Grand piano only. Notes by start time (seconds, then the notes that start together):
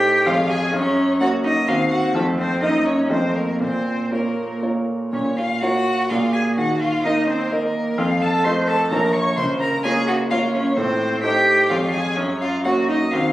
Already playing: A2 A3 D#4 C5
0.26 F2 G#3 G#4 C#5
0.73 F#2
1.21 A#3 F#4 C#5
1.68 D#2 C4 F#4 C5
2.15 F2 C4 F4 C5
2.62 F#2 A#3 D#4 D#5
3.10 F2 A3 F4 D#5
3.60 A#2
4.12 A#3 F4 C#5
4.62 A#3 F4 C#5
5.13 A#2
5.62 A#3 F4 C#5
6.10 A#2 A#3 G#4 D5
6.57 D#2
7.05 A#3 A#4 D#5
7.51 A#3 A#4 D#5
7.98 F2
8.45 A3 F4 D#5
8.91 A#1 A#3 F4 C#5
9.37 C#2
9.85 A#3 F4 C#5
10.31 A#3 F4 C#5
10.77 A2
11.24 A3 D#4 C5
11.70 F2 G#3 G#4 C#5
12.17 F#2
12.65 A#3 F#4 C#5
13.13 D#2 C4 F#4 C5